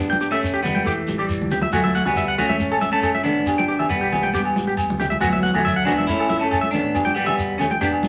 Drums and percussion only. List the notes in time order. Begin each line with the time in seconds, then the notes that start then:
0.13 high conga
0.21 shekere
0.43 shekere
0.65 low conga, shekere
0.76 high conga
0.86 shekere
1.08 high conga, shekere
1.29 shekere
1.42 high conga
1.51 low conga, shekere
1.62 high conga
1.73 low agogo, shekere
1.85 high conga
1.95 shekere
2.06 low conga, low agogo
2.16 shekere
2.38 low conga, low agogo, shekere
2.49 high conga
2.60 shekere
2.72 low agogo
2.81 high conga, shekere
3.03 low agogo, shekere
3.15 high conga
3.25 low conga, shekere
3.46 low agogo, shekere
3.59 high conga
3.80 low conga, low agogo
3.90 shekere
4.12 low conga, low agogo, shekere
4.24 high conga
4.34 shekere
4.45 low agogo
4.56 high conga, shekere
4.77 low agogo, shekere
4.90 high conga
5.01 low conga, shekere
5.12 high conga
5.21 low agogo, shekere
5.34 high conga
5.44 shekere
5.54 low conga, low agogo
5.66 shekere
5.86 low conga, low agogo, shekere
5.99 high conga
6.09 shekere
6.19 low agogo
6.30 high conga, shekere
6.51 low agogo, shekere
6.63 high conga
6.73 low conga, shekere
6.95 low agogo, shekere
7.07 high conga
7.16 shekere
7.28 low conga, low agogo
7.39 shekere
7.59 low conga, low agogo, shekere
7.71 high conga
7.81 shekere
7.92 low agogo
8.03 high conga, shekere